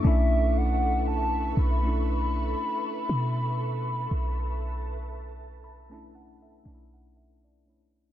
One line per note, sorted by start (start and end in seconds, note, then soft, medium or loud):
0.03 1.53 B1 loud
0.03 1.41 A3 medium
0.03 1.41 C#4 medium
0.03 1.42 D4 medium
0.03 8.12 A4 medium
0.03 8.12 B4 medium
0.03 8.12 E5 medium
0.03 0.59 E5 loud
0.03 4.07 C#6 medium
0.07 1.43 E4 medium
0.57 1.07 F#5 loud
1.08 1.54 A5 loud
1.57 2.55 B1 loud
1.57 7.13 B5 loud
1.83 3.38 A3 medium
1.83 3.39 C#4 medium
1.83 3.40 D4 medium
1.87 3.41 E4 medium
3.09 4.07 B2 loud
4.11 6.61 B1 loud
4.11 8.12 A5 loud
5.64 5.89 B5 medium
5.90 6.48 A3 medium
5.90 6.49 C#4 medium
5.90 6.49 D4 medium
5.90 6.13 A5 medium
5.94 6.50 E4 medium
6.15 6.40 F#5 medium
6.42 6.90 E5 medium
6.64 8.12 B1 loud
6.64 7.44 A3 medium
6.64 7.45 C#4 medium
6.64 7.45 D4 medium
6.68 6.74 D#4 medium
6.74 7.49 E4 medium
6.94 7.15 F#5 medium
7.17 7.42 E5 medium
7.44 7.66 D5 medium
7.66 8.06 A3 medium
7.66 8.07 C#4 medium
7.66 8.07 D4 medium
7.66 8.12 C#5 medium
7.70 8.08 E4 medium